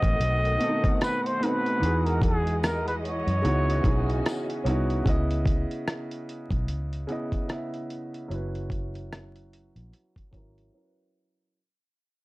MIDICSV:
0, 0, Header, 1, 6, 480
1, 0, Start_track
1, 0, Key_signature, 4, "minor"
1, 0, Tempo, 810811
1, 1076, Time_signature, 4, 2, 24, 8
1, 7250, End_track
2, 0, Start_track
2, 0, Title_t, "Muted trumpet"
2, 0, Program_c, 0, 59
2, 0, Note_on_c, 0, 75, 114
2, 601, Note_off_c, 0, 75, 0
2, 605, Note_on_c, 0, 71, 100
2, 744, Note_on_c, 0, 72, 95
2, 753, Note_off_c, 0, 71, 0
2, 846, Note_on_c, 0, 71, 100
2, 855, Note_off_c, 0, 72, 0
2, 1218, Note_on_c, 0, 70, 85
2, 1227, Note_off_c, 0, 71, 0
2, 1316, Note_off_c, 0, 70, 0
2, 1319, Note_on_c, 0, 68, 86
2, 1564, Note_on_c, 0, 70, 81
2, 1573, Note_off_c, 0, 68, 0
2, 1699, Note_off_c, 0, 70, 0
2, 1703, Note_on_c, 0, 71, 77
2, 1746, Note_off_c, 0, 71, 0
2, 1802, Note_on_c, 0, 73, 85
2, 2495, Note_off_c, 0, 73, 0
2, 7250, End_track
3, 0, Start_track
3, 0, Title_t, "Upright piano"
3, 0, Program_c, 1, 0
3, 0, Control_c, 1, 64, 127
3, 0, Note_on_c, 1, 47, 82
3, 0, Note_on_c, 1, 57, 79
3, 0, Note_on_c, 1, 63, 80
3, 0, Note_on_c, 1, 72, 95
3, 64, Note_off_c, 1, 57, 0
3, 69, Note_off_c, 1, 63, 0
3, 74, Note_off_c, 1, 72, 0
3, 346, Note_off_c, 1, 47, 0
3, 346, Note_on_c, 1, 47, 76
3, 358, Note_on_c, 1, 57, 67
3, 369, Note_on_c, 1, 60, 52
3, 378, Note_on_c, 1, 69, 79
3, 406, Note_on_c, 1, 63, 66
3, 407, Note_off_c, 1, 60, 0
3, 806, Note_off_c, 1, 47, 0
3, 813, Note_off_c, 1, 57, 0
3, 822, Note_off_c, 1, 69, 0
3, 824, Note_on_c, 1, 47, 70
3, 834, Note_on_c, 1, 57, 66
3, 835, Note_off_c, 1, 63, 0
3, 844, Note_on_c, 1, 63, 64
3, 856, Note_on_c, 1, 60, 78
3, 1058, Note_off_c, 1, 47, 0
3, 1063, Note_off_c, 1, 57, 0
3, 1063, Note_on_c, 1, 52, 67
3, 1064, Note_off_c, 1, 63, 0
3, 1072, Note_on_c, 1, 63, 64
3, 1074, Note_off_c, 1, 60, 0
3, 1082, Note_on_c, 1, 66, 61
3, 1083, Control_c, 1, 64, 0
3, 1094, Note_on_c, 1, 68, 82
3, 1200, Control_c, 1, 64, 127
3, 1980, Note_off_c, 1, 52, 0
3, 1985, Note_off_c, 1, 63, 0
3, 1990, Note_off_c, 1, 66, 0
3, 1996, Note_off_c, 1, 68, 0
3, 2023, Note_on_c, 1, 49, 72
3, 2032, Note_on_c, 1, 59, 65
3, 2039, Note_on_c, 1, 63, 65
3, 2045, Control_c, 1, 64, 0
3, 2047, Note_on_c, 1, 64, 67
3, 2054, Note_on_c, 1, 66, 79
3, 2157, Control_c, 1, 64, 127
3, 2255, Note_off_c, 1, 49, 0
3, 2261, Note_off_c, 1, 59, 0
3, 2264, Note_on_c, 1, 49, 69
3, 2265, Note_off_c, 1, 63, 0
3, 2269, Note_off_c, 1, 64, 0
3, 2273, Note_off_c, 1, 66, 0
3, 2274, Note_on_c, 1, 59, 65
3, 2280, Note_on_c, 1, 63, 64
3, 2288, Note_on_c, 1, 64, 64
3, 2295, Note_on_c, 1, 68, 75
3, 2725, Note_off_c, 1, 49, 0
3, 2730, Note_off_c, 1, 59, 0
3, 2733, Note_off_c, 1, 63, 0
3, 2737, Note_off_c, 1, 64, 0
3, 2741, Note_off_c, 1, 68, 0
3, 2746, Note_on_c, 1, 61, 77
3, 2753, Note_on_c, 1, 59, 82
3, 2763, Note_on_c, 1, 63, 76
3, 2770, Note_on_c, 1, 64, 73
3, 2778, Note_on_c, 1, 66, 97
3, 2979, Note_off_c, 1, 61, 0
3, 2982, Note_off_c, 1, 59, 0
3, 2983, Note_on_c, 1, 49, 78
3, 2987, Note_off_c, 1, 63, 0
3, 2991, Note_off_c, 1, 64, 0
3, 2994, Note_on_c, 1, 59, 75
3, 2995, Note_off_c, 1, 66, 0
3, 3002, Control_c, 1, 64, 0
3, 3004, Note_on_c, 1, 64, 70
3, 3014, Note_on_c, 1, 75, 91
3, 3100, Control_c, 1, 64, 127
3, 3900, Note_off_c, 1, 49, 0
3, 3905, Note_off_c, 1, 59, 0
3, 3911, Note_off_c, 1, 64, 0
3, 3916, Note_off_c, 1, 75, 0
3, 4185, Note_on_c, 1, 49, 89
3, 4195, Note_on_c, 1, 59, 81
3, 4205, Note_on_c, 1, 64, 75
3, 4215, Note_on_c, 1, 75, 89
3, 4416, Note_off_c, 1, 49, 0
3, 4423, Note_off_c, 1, 59, 0
3, 4425, Note_on_c, 1, 49, 78
3, 4428, Note_off_c, 1, 64, 0
3, 4433, Note_off_c, 1, 75, 0
3, 4437, Note_on_c, 1, 59, 68
3, 4447, Note_on_c, 1, 64, 70
3, 4458, Note_on_c, 1, 76, 81
3, 4886, Note_off_c, 1, 49, 0
3, 4892, Note_off_c, 1, 59, 0
3, 4897, Note_off_c, 1, 64, 0
3, 4902, Note_off_c, 1, 76, 0
3, 4903, Note_on_c, 1, 54, 83
3, 4914, Note_on_c, 1, 61, 71
3, 4923, Control_c, 1, 64, 0
3, 4923, Note_on_c, 1, 64, 68
3, 4935, Note_on_c, 1, 71, 90
3, 5031, Control_c, 1, 64, 127
3, 5820, Note_off_c, 1, 54, 0
3, 5826, Note_off_c, 1, 61, 0
3, 5830, Note_off_c, 1, 64, 0
3, 5836, Note_off_c, 1, 71, 0
3, 6105, Note_on_c, 1, 54, 85
3, 6118, Note_on_c, 1, 61, 76
3, 6126, Note_on_c, 1, 64, 77
3, 6138, Note_on_c, 1, 70, 90
3, 6337, Note_off_c, 1, 54, 0
3, 6345, Note_off_c, 1, 61, 0
3, 6346, Note_on_c, 1, 54, 73
3, 6349, Note_off_c, 1, 64, 0
3, 6355, Note_off_c, 1, 70, 0
3, 6357, Note_on_c, 1, 61, 67
3, 6367, Note_on_c, 1, 64, 65
3, 6376, Note_on_c, 1, 70, 64
3, 6411, Note_off_c, 1, 70, 0
3, 6806, Note_off_c, 1, 54, 0
3, 6812, Note_off_c, 1, 61, 0
3, 6817, Note_off_c, 1, 64, 0
3, 6844, Control_c, 1, 64, 0
3, 7250, End_track
4, 0, Start_track
4, 0, Title_t, "String section"
4, 0, Program_c, 2, 48
4, 0, Note_on_c, 2, 51, 74
4, 0, Note_on_c, 2, 57, 68
4, 0, Note_on_c, 2, 60, 65
4, 0, Note_on_c, 2, 78, 79
4, 1055, Note_off_c, 2, 51, 0
4, 1055, Note_off_c, 2, 60, 0
4, 1056, Note_off_c, 2, 57, 0
4, 1080, Note_on_c, 2, 52, 71
4, 1081, Note_on_c, 2, 56, 69
4, 1081, Note_on_c, 2, 75, 68
4, 2012, Note_off_c, 2, 78, 0
4, 2029, Note_off_c, 2, 56, 0
4, 2038, Note_on_c, 2, 61, 68
4, 2040, Note_on_c, 2, 66, 84
4, 2979, Note_off_c, 2, 52, 0
4, 2979, Note_off_c, 2, 75, 0
4, 2987, Note_off_c, 2, 61, 0
4, 2988, Note_off_c, 2, 66, 0
4, 7250, End_track
5, 0, Start_track
5, 0, Title_t, "Fingered electric bass"
5, 0, Program_c, 3, 33
5, 16, Note_on_c, 3, 33, 81
5, 106, Note_off_c, 3, 33, 0
5, 118, Note_on_c, 3, 35, 100
5, 331, Note_off_c, 3, 35, 0
5, 1077, Note_on_c, 3, 40, 110
5, 1912, Note_off_c, 3, 40, 0
5, 1937, Note_on_c, 3, 42, 77
5, 2026, Note_off_c, 3, 42, 0
5, 2039, Note_on_c, 3, 37, 90
5, 2252, Note_off_c, 3, 37, 0
5, 2275, Note_on_c, 3, 35, 74
5, 2490, Note_off_c, 3, 35, 0
5, 2753, Note_on_c, 3, 36, 75
5, 2969, Note_off_c, 3, 36, 0
5, 2995, Note_on_c, 3, 37, 98
5, 3335, Note_off_c, 3, 37, 0
5, 3854, Note_on_c, 3, 35, 75
5, 3955, Note_off_c, 3, 35, 0
5, 3955, Note_on_c, 3, 37, 88
5, 4170, Note_off_c, 3, 37, 0
5, 4915, Note_on_c, 3, 30, 114
5, 5752, Note_off_c, 3, 30, 0
5, 5776, Note_on_c, 3, 34, 68
5, 5866, Note_off_c, 3, 34, 0
5, 6115, Note_on_c, 3, 32, 77
5, 6330, Note_off_c, 3, 32, 0
5, 7250, End_track
6, 0, Start_track
6, 0, Title_t, "Drums"
6, 15, Note_on_c, 9, 36, 95
6, 21, Note_on_c, 9, 42, 47
6, 74, Note_off_c, 9, 36, 0
6, 81, Note_off_c, 9, 42, 0
6, 122, Note_on_c, 9, 42, 81
6, 182, Note_off_c, 9, 42, 0
6, 267, Note_on_c, 9, 42, 46
6, 326, Note_off_c, 9, 42, 0
6, 358, Note_on_c, 9, 42, 65
6, 418, Note_off_c, 9, 42, 0
6, 496, Note_on_c, 9, 36, 93
6, 501, Note_on_c, 9, 42, 40
6, 556, Note_off_c, 9, 36, 0
6, 560, Note_off_c, 9, 42, 0
6, 599, Note_on_c, 9, 42, 77
6, 602, Note_on_c, 9, 37, 113
6, 616, Note_on_c, 9, 54, 81
6, 658, Note_off_c, 9, 42, 0
6, 661, Note_off_c, 9, 37, 0
6, 675, Note_off_c, 9, 54, 0
6, 747, Note_on_c, 9, 42, 48
6, 806, Note_off_c, 9, 42, 0
6, 846, Note_on_c, 9, 42, 69
6, 905, Note_off_c, 9, 42, 0
6, 984, Note_on_c, 9, 42, 43
6, 1043, Note_off_c, 9, 42, 0
6, 1084, Note_on_c, 9, 42, 70
6, 1143, Note_off_c, 9, 42, 0
6, 1222, Note_on_c, 9, 42, 43
6, 1281, Note_off_c, 9, 42, 0
6, 1312, Note_on_c, 9, 36, 98
6, 1321, Note_on_c, 9, 42, 70
6, 1371, Note_off_c, 9, 36, 0
6, 1380, Note_off_c, 9, 42, 0
6, 1462, Note_on_c, 9, 42, 43
6, 1521, Note_off_c, 9, 42, 0
6, 1559, Note_on_c, 9, 54, 71
6, 1562, Note_on_c, 9, 37, 117
6, 1566, Note_on_c, 9, 42, 66
6, 1618, Note_off_c, 9, 54, 0
6, 1622, Note_off_c, 9, 37, 0
6, 1625, Note_off_c, 9, 42, 0
6, 1703, Note_on_c, 9, 42, 46
6, 1762, Note_off_c, 9, 42, 0
6, 1807, Note_on_c, 9, 42, 64
6, 1866, Note_off_c, 9, 42, 0
6, 1940, Note_on_c, 9, 42, 46
6, 1999, Note_off_c, 9, 42, 0
6, 2041, Note_on_c, 9, 42, 79
6, 2101, Note_off_c, 9, 42, 0
6, 2189, Note_on_c, 9, 42, 50
6, 2248, Note_off_c, 9, 42, 0
6, 2273, Note_on_c, 9, 36, 92
6, 2278, Note_on_c, 9, 42, 63
6, 2332, Note_off_c, 9, 36, 0
6, 2337, Note_off_c, 9, 42, 0
6, 2425, Note_on_c, 9, 42, 38
6, 2484, Note_off_c, 9, 42, 0
6, 2520, Note_on_c, 9, 42, 81
6, 2523, Note_on_c, 9, 37, 107
6, 2536, Note_on_c, 9, 54, 77
6, 2579, Note_off_c, 9, 42, 0
6, 2582, Note_off_c, 9, 37, 0
6, 2595, Note_off_c, 9, 54, 0
6, 2663, Note_on_c, 9, 42, 43
6, 2722, Note_off_c, 9, 42, 0
6, 2760, Note_on_c, 9, 42, 68
6, 2820, Note_off_c, 9, 42, 0
6, 2901, Note_on_c, 9, 42, 44
6, 2960, Note_off_c, 9, 42, 0
6, 2994, Note_on_c, 9, 36, 103
6, 3002, Note_on_c, 9, 42, 69
6, 3053, Note_off_c, 9, 36, 0
6, 3062, Note_off_c, 9, 42, 0
6, 3141, Note_on_c, 9, 42, 42
6, 3200, Note_off_c, 9, 42, 0
6, 3230, Note_on_c, 9, 36, 102
6, 3239, Note_on_c, 9, 42, 69
6, 3289, Note_off_c, 9, 36, 0
6, 3299, Note_off_c, 9, 42, 0
6, 3381, Note_on_c, 9, 42, 43
6, 3440, Note_off_c, 9, 42, 0
6, 3478, Note_on_c, 9, 37, 120
6, 3482, Note_on_c, 9, 42, 65
6, 3538, Note_off_c, 9, 37, 0
6, 3541, Note_off_c, 9, 42, 0
6, 3619, Note_on_c, 9, 42, 48
6, 3679, Note_off_c, 9, 42, 0
6, 3724, Note_on_c, 9, 42, 58
6, 3783, Note_off_c, 9, 42, 0
6, 3851, Note_on_c, 9, 36, 90
6, 3858, Note_on_c, 9, 42, 45
6, 3910, Note_off_c, 9, 36, 0
6, 3917, Note_off_c, 9, 42, 0
6, 3956, Note_on_c, 9, 42, 78
6, 4016, Note_off_c, 9, 42, 0
6, 4101, Note_on_c, 9, 42, 45
6, 4161, Note_off_c, 9, 42, 0
6, 4195, Note_on_c, 9, 42, 56
6, 4254, Note_off_c, 9, 42, 0
6, 4333, Note_on_c, 9, 36, 79
6, 4337, Note_on_c, 9, 42, 38
6, 4393, Note_off_c, 9, 36, 0
6, 4397, Note_off_c, 9, 42, 0
6, 4435, Note_on_c, 9, 42, 78
6, 4438, Note_on_c, 9, 37, 116
6, 4494, Note_off_c, 9, 42, 0
6, 4498, Note_off_c, 9, 37, 0
6, 4580, Note_on_c, 9, 42, 41
6, 4640, Note_off_c, 9, 42, 0
6, 4679, Note_on_c, 9, 42, 61
6, 4738, Note_off_c, 9, 42, 0
6, 4821, Note_on_c, 9, 42, 44
6, 4880, Note_off_c, 9, 42, 0
6, 4922, Note_on_c, 9, 42, 69
6, 4981, Note_off_c, 9, 42, 0
6, 5062, Note_on_c, 9, 42, 39
6, 5121, Note_off_c, 9, 42, 0
6, 5150, Note_on_c, 9, 36, 95
6, 5160, Note_on_c, 9, 42, 69
6, 5209, Note_off_c, 9, 36, 0
6, 5219, Note_off_c, 9, 42, 0
6, 5300, Note_on_c, 9, 42, 42
6, 5359, Note_off_c, 9, 42, 0
6, 5402, Note_on_c, 9, 37, 113
6, 5406, Note_on_c, 9, 42, 62
6, 5461, Note_off_c, 9, 37, 0
6, 5465, Note_off_c, 9, 42, 0
6, 5539, Note_on_c, 9, 42, 45
6, 5598, Note_off_c, 9, 42, 0
6, 5644, Note_on_c, 9, 42, 58
6, 5703, Note_off_c, 9, 42, 0
6, 5779, Note_on_c, 9, 42, 43
6, 5838, Note_off_c, 9, 42, 0
6, 5881, Note_on_c, 9, 42, 76
6, 5940, Note_off_c, 9, 42, 0
6, 6015, Note_on_c, 9, 36, 81
6, 6025, Note_on_c, 9, 42, 44
6, 6075, Note_off_c, 9, 36, 0
6, 6084, Note_off_c, 9, 42, 0
6, 6114, Note_on_c, 9, 36, 88
6, 6119, Note_on_c, 9, 42, 55
6, 6173, Note_off_c, 9, 36, 0
6, 6178, Note_off_c, 9, 42, 0
6, 6263, Note_on_c, 9, 42, 38
6, 6322, Note_off_c, 9, 42, 0
6, 7250, End_track
0, 0, End_of_file